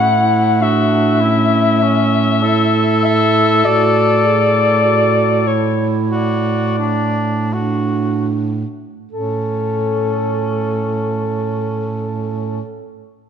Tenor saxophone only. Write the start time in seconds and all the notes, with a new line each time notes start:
0.01 E4
0.61 F#4
1.21 E4
1.83 C#4
2.43 A4
6.10 F#4
6.79 D4
7.53 F#4
9.13 C#4